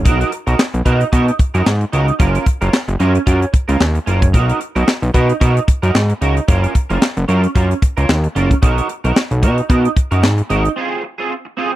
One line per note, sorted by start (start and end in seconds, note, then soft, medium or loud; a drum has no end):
0.05 0.24 B1 loud
0.05 0.30 D#4 medium
0.05 0.31 F#4 loud
0.05 0.31 A#4 medium
0.05 kick loud
0.05 closed hi-hat medium
0.21 closed hi-hat soft
0.32 muted clean electric guitar stroke soft
0.32 closed hi-hat medium
0.47 0.55 B1 loud
0.47 0.62 D#4 soft
0.47 0.62 F#4 medium
0.47 0.61 A#4 medium
0.47 closed hi-hat soft
0.59 snare loud
0.59 clap medium
0.74 0.82 B1 medium
0.74 muted clean electric guitar stroke soft
0.74 closed hi-hat soft
0.85 1.04 B2 medium
0.85 1.06 D#4 medium
0.85 1.01 F#4 medium
0.85 0.99 A#4 medium
0.85 kick medium
0.85 closed hi-hat medium
1.01 muted clean electric guitar stroke soft
1.01 closed hi-hat medium
1.12 1.31 B2 medium
1.12 1.33 D#4 medium
1.12 1.27 F#4 medium
1.12 1.26 A#4 medium
1.12 kick loud
1.12 closed hi-hat medium
1.27 muted clean electric guitar stroke soft
1.27 closed hi-hat soft
1.39 muted clean electric guitar stroke soft
1.39 kick medium
1.39 closed hi-hat medium
1.54 1.63 F#2 medium
1.54 1.69 D#4 soft
1.54 1.69 F#4 medium
1.54 1.68 A#4 medium
1.54 closed hi-hat medium
1.66 1.85 G#2 medium
1.66 snare loud
1.66 clap medium
1.81 muted clean electric guitar stroke soft
1.81 closed hi-hat soft
1.92 2.12 C#2 medium
1.92 2.13 D#4 medium
1.92 2.07 F#4 medium
1.92 2.06 A#4 medium
1.92 closed hi-hat medium
2.07 muted clean electric guitar stroke soft
2.07 closed hi-hat soft
2.19 2.38 F#1 loud
2.19 2.44 C#4 medium
2.19 2.45 F4 medium
2.19 2.45 A#4 medium
2.19 kick loud
2.19 closed hi-hat medium
2.35 closed hi-hat medium
2.46 muted clean electric guitar stroke soft
2.46 kick medium
2.46 closed hi-hat medium
2.61 2.70 F#1 loud
2.61 2.76 C#4 soft
2.61 2.76 F4 medium
2.61 2.75 A#4 medium
2.61 closed hi-hat soft
2.73 snare loud
2.73 clap medium
2.88 2.96 F#1 medium
2.88 muted clean electric guitar stroke soft
2.88 closed hi-hat soft
2.99 3.19 F#2 medium
2.99 3.20 C#4 medium
2.99 3.15 F4 medium
2.99 3.13 A#4 medium
2.99 closed hi-hat medium
3.15 muted clean electric guitar stroke soft
3.15 closed hi-hat medium
3.26 3.45 F#2 loud
3.26 3.47 C#4 medium
3.26 3.41 F4 medium
3.26 3.40 A#4 medium
3.26 kick medium
3.26 closed hi-hat medium
3.41 muted clean electric guitar stroke soft
3.41 closed hi-hat soft
3.53 muted clean electric guitar stroke soft
3.53 kick medium
3.53 closed hi-hat medium
3.68 3.77 C#2 medium
3.68 3.83 C#4 medium
3.68 3.83 F4 medium
3.68 3.82 A#4 medium
3.68 closed hi-hat medium
3.80 3.99 D#2 medium
3.80 snare loud
3.80 clap medium
3.95 muted clean electric guitar stroke soft
3.95 closed hi-hat soft
4.06 4.35 F#1 medium
4.06 4.27 C#4 medium
4.06 4.22 F4 medium
4.06 4.20 A#4 medium
4.06 closed hi-hat medium
4.22 muted clean electric guitar stroke soft
4.22 kick medium
4.22 closed hi-hat soft
4.33 4.53 B1 loud
4.33 4.59 D#4 medium
4.33 4.59 F#4 medium
4.33 4.59 A#4 medium
4.33 kick loud
4.33 closed hi-hat medium
4.49 closed hi-hat medium
4.60 muted clean electric guitar stroke soft
4.60 closed hi-hat medium
4.75 4.84 B1 loud
4.75 4.91 D#4 soft
4.75 4.90 F#4 medium
4.75 4.90 A#4 medium
4.75 closed hi-hat soft
4.88 snare loud
4.88 clap medium
5.02 5.11 B1 medium
5.02 muted clean electric guitar stroke soft
5.02 closed hi-hat soft
5.14 5.33 B2 medium
5.14 5.35 D#4 medium
5.14 5.29 F#4 medium
5.14 5.28 A#4 medium
5.14 kick medium
5.14 closed hi-hat medium
5.29 muted clean electric guitar stroke soft
5.29 closed hi-hat medium
5.40 5.60 B2 medium
5.40 5.61 D#4 medium
5.40 5.56 F#4 medium
5.40 5.54 A#4 medium
5.40 kick medium
5.40 closed hi-hat medium
5.56 muted clean electric guitar stroke soft
5.56 closed hi-hat soft
5.68 muted clean electric guitar stroke soft
5.68 kick medium
5.68 closed hi-hat medium
5.82 5.91 F#2 loud
5.82 5.98 D#4 soft
5.82 5.97 F#4 medium
5.82 5.97 A#4 medium
5.82 closed hi-hat medium
5.95 6.13 G#2 medium
5.95 snare loud
5.95 clap medium
6.09 muted clean electric guitar stroke soft
6.09 closed hi-hat soft
6.21 6.40 C#2 medium
6.21 6.42 D#4 medium
6.21 6.36 F#4 medium
6.21 6.35 A#4 medium
6.21 closed hi-hat medium
6.36 muted clean electric guitar stroke soft
6.36 closed hi-hat soft
6.48 6.67 F#1 loud
6.48 6.73 C#4 medium
6.48 6.73 F4 medium
6.48 6.74 A#4 medium
6.48 kick loud
6.48 closed hi-hat medium
6.64 closed hi-hat medium
6.75 muted clean electric guitar stroke soft
6.75 kick medium
6.75 closed hi-hat medium
6.90 6.98 F#1 medium
6.90 7.05 C#4 medium
6.90 7.04 F4 medium
6.90 7.04 A#4 medium
6.90 closed hi-hat soft
7.02 snare loud
7.02 clap medium
7.17 7.25 F#1 loud
7.17 muted clean electric guitar stroke soft
7.17 closed hi-hat soft
7.28 7.47 F#2 loud
7.28 7.49 C#4 medium
7.28 7.43 F4 medium
7.28 7.42 A#4 medium
7.28 closed hi-hat medium
7.43 muted clean electric guitar stroke soft
7.43 closed hi-hat soft
7.55 7.74 F#2 loud
7.55 7.76 C#4 medium
7.55 7.70 F4 medium
7.55 7.69 A#4 medium
7.55 kick medium
7.55 closed hi-hat medium
7.70 muted clean electric guitar stroke medium
7.70 closed hi-hat soft
7.82 muted clean electric guitar stroke soft
7.82 kick medium
7.82 closed hi-hat medium
7.97 8.06 C#2 medium
7.97 8.12 C#4 soft
7.97 8.12 F4 medium
7.97 8.11 A#4 medium
7.97 closed hi-hat medium
8.09 8.28 D#2 loud
8.09 snare loud
8.09 clap medium
8.24 muted clean electric guitar stroke soft
8.24 closed hi-hat soft
8.35 8.54 F#1 medium
8.35 8.56 C#4 medium
8.35 8.50 F4 medium
8.35 8.49 A#4 medium
8.35 closed hi-hat medium
8.50 muted clean electric guitar stroke soft
8.50 kick medium
8.50 closed hi-hat soft
8.62 8.81 B1 loud
8.62 8.87 D#4 medium
8.62 8.88 F#4 medium
8.62 8.88 A#4 medium
8.62 kick loud
8.62 closed hi-hat medium
8.78 closed hi-hat medium
8.89 muted clean electric guitar stroke soft
8.89 closed hi-hat medium
9.04 9.13 B1 loud
9.04 9.19 D#4 soft
9.04 9.19 F#4 medium
9.04 9.18 A#4 medium
9.04 closed hi-hat soft
9.16 snare loud
9.16 clap medium
9.31 9.44 B1 loud
9.31 muted clean electric guitar stroke soft
9.31 closed hi-hat soft
9.42 9.61 B2 medium
9.42 9.63 D#4 medium
9.42 9.58 F#4 medium
9.42 9.57 A#4 medium
9.42 kick medium
9.42 closed hi-hat medium
9.58 muted clean electric guitar stroke soft
9.58 closed hi-hat soft
9.69 9.88 B2 medium
9.69 9.90 D#4 medium
9.69 9.84 F#4 medium
9.69 9.83 A#4 medium
9.69 kick loud
9.69 closed hi-hat medium
9.84 muted clean electric guitar stroke soft
9.84 closed hi-hat soft
9.96 muted clean electric guitar stroke soft
9.96 kick medium
9.96 closed hi-hat medium
10.11 10.25 F#2 medium
10.11 10.26 D#4 soft
10.11 10.26 F#4 medium
10.11 10.25 A#4 medium
10.11 closed hi-hat medium
10.23 10.42 G#2 medium
10.23 snare loud
10.23 clap medium
10.38 muted clean electric guitar stroke soft
10.38 closed hi-hat soft
10.50 10.69 G#1 medium
10.50 10.70 D#4 medium
10.50 10.65 F#4 medium
10.50 10.63 A#4 medium
10.50 closed hi-hat medium
10.65 muted clean electric guitar stroke soft
10.65 closed hi-hat soft
10.76 11.01 C4 medium
10.76 11.02 F4 medium
10.76 11.02 G#4 medium
11.03 muted clean electric guitar stroke soft
11.18 11.33 C4 soft
11.18 11.33 F4 medium
11.18 11.33 G#4 medium
11.45 muted clean electric guitar stroke soft
11.57 11.76 C4 medium
11.57 11.72 F4 medium
11.57 11.71 G#4 medium
11.72 muted clean electric guitar stroke soft